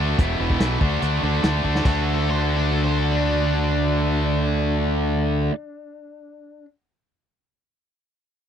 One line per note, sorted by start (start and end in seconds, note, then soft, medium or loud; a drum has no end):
0.00 0.14 D2 medium
0.00 0.17 D3 medium
0.00 0.19 A3 medium
0.00 0.18 D4 medium
0.00 0.18 F#4 medium
0.18 0.35 E1 medium
0.18 0.38 E2 medium
0.18 0.39 B2 medium
0.18 0.39 E3 medium
0.18 0.40 A3 medium
0.18 0.40 B3 medium
0.18 0.40 E4 medium
0.18 kick loud
0.18 closed hi-hat medium
0.39 0.56 E1 medium
0.39 0.58 E2 medium
0.39 0.59 B2 medium
0.39 0.60 E3 medium
0.39 0.59 A3 medium
0.39 0.60 B3 medium
0.39 0.61 E4 medium
0.50 kick medium
0.59 0.76 B1 medium
0.59 0.79 E2 medium
0.59 0.80 B2 medium
0.59 0.80 E3 medium
0.59 0.80 A3 medium
0.59 0.81 B3 medium
0.59 0.81 E4 medium
0.59 snare medium
0.59 closed hi-hat medium
0.81 0.97 D2 medium
0.81 1.01 D3 medium
0.81 1.01 A3 medium
0.81 1.02 D4 medium
0.81 1.02 F#4 medium
0.81 kick medium
1.02 1.18 D2 medium
1.02 1.22 D3 medium
1.02 1.22 A3 medium
1.02 1.23 D4 medium
1.02 1.23 F#4 medium
1.02 closed hi-hat medium
1.23 1.39 D2 medium
1.23 1.42 D3 medium
1.23 1.43 A3 medium
1.23 1.43 D4 medium
1.23 1.43 F#4 medium
1.43 1.60 D2 medium
1.43 1.62 D3 medium
1.43 1.63 A3 medium
1.43 1.63 D4 medium
1.43 1.64 F#4 medium
1.43 snare medium
1.43 closed hi-hat soft
1.63 1.81 D2 medium
1.63 1.83 D3 medium
1.63 1.84 A3 medium
1.63 1.84 D4 medium
1.63 1.84 F#4 medium
1.63 kick soft
1.75 snare medium
1.84 5.48 D2 medium
1.84 5.51 D3 medium
1.84 5.53 A3 medium
1.84 5.53 D4 medium
1.84 5.54 F#4 medium
1.84 kick medium
1.84 crash medium
1.88 5.55 A4 medium
2.14 2.29 A4 medium
2.29 2.43 C5 medium
2.43 2.55 A4 medium
2.56 2.69 D4 medium
2.71 2.83 A4 medium
2.84 2.98 C5 medium
2.98 3.11 A4 medium
3.12 3.24 D4 medium
3.25 6.65 D4 medium